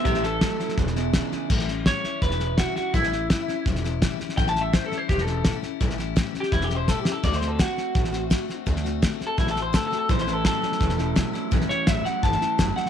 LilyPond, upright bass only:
\new Staff \with { instrumentName = "Upright bass" } { \clef bass \time 4/4 \key a \mixolydian \tempo 4 = 168 a,,4. r8 e,,4. r8 | a,,4. r8 e,,4. r8 | a,,4. r8 e,,4. r8 | a,,4. r8 e,,4. r8 |
a,,4. r8 e,,4. r8 | d,4. r8 a,,4. r8 | d,4. r8 a,,4. r8 | a,,4. r8 e,,4. r8 |
a,,8 r8 a,,8 r8 g,,8 r8 fis,,8 r8 | }